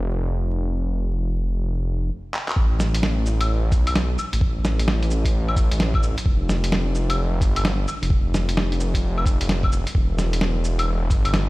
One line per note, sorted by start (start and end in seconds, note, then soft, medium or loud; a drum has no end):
0.00 2.10 F1 medium
2.34 clap medium
2.48 clap medium
2.56 3.74 A1 loud
2.56 kick loud
2.80 snare medium
2.80 cabasa medium
2.95 closed hi-hat medium
3.03 snare loud
3.26 cabasa medium
3.41 closed hi-hat medium
3.41 claves medium
3.72 4.17 B1 medium
3.72 kick loud
3.72 closed hi-hat soft
3.72 cabasa medium
3.87 closed hi-hat medium
3.87 claves medium
3.95 snare loud
3.95 closed hi-hat soft
4.19 cabasa medium
4.19 claves soft
4.33 5.69 A1 medium
4.33 closed hi-hat medium
4.41 kick loud
4.65 snare medium
4.65 cabasa medium
4.79 closed hi-hat medium
4.88 snare loud
5.03 closed hi-hat soft
5.11 cabasa medium
5.25 kick medium
5.25 closed hi-hat medium
5.48 claves medium
5.56 kick loud
5.56 closed hi-hat soft
5.56 cabasa medium
5.71 6.16 A1 medium
5.71 closed hi-hat medium
5.80 snare loud
5.80 closed hi-hat medium
5.94 kick loud
5.94 claves medium
6.03 cabasa medium
6.18 closed hi-hat medium
6.18 cabasa soft
6.26 7.43 F1 medium
6.26 kick loud
6.49 snare medium
6.49 cabasa medium
6.64 closed hi-hat medium
6.72 snare loud
6.95 cabasa medium
7.10 closed hi-hat medium
7.10 claves medium
7.41 7.86 G1 medium
7.41 kick loud
7.41 closed hi-hat soft
7.41 cabasa medium
7.56 closed hi-hat medium
7.56 claves medium
7.65 snare loud
7.65 closed hi-hat soft
7.88 cabasa medium
7.88 claves soft
8.02 9.39 F1 medium
8.02 closed hi-hat medium
8.10 kick loud
8.34 snare medium
8.34 cabasa medium
8.49 closed hi-hat medium
8.57 snare loud
8.72 closed hi-hat soft
8.80 cabasa medium
8.94 kick medium
8.94 closed hi-hat medium
9.18 claves medium
9.26 kick loud
9.26 closed hi-hat soft
9.26 cabasa medium
9.40 9.85 F1 medium
9.40 closed hi-hat medium
9.49 snare loud
9.49 closed hi-hat soft
9.63 kick loud
9.63 claves medium
9.72 cabasa medium
9.87 closed hi-hat medium
9.87 cabasa soft
9.95 11.12 E1 loud
9.95 kick loud
10.19 snare medium
10.19 cabasa medium
10.33 closed hi-hat medium
10.41 snare loud
10.64 cabasa medium
10.79 closed hi-hat medium
10.79 claves medium
11.10 11.49 G1 medium
11.10 kick loud
11.10 closed hi-hat soft
11.10 cabasa medium
11.25 closed hi-hat medium
11.25 claves medium
11.34 snare loud
11.34 closed hi-hat soft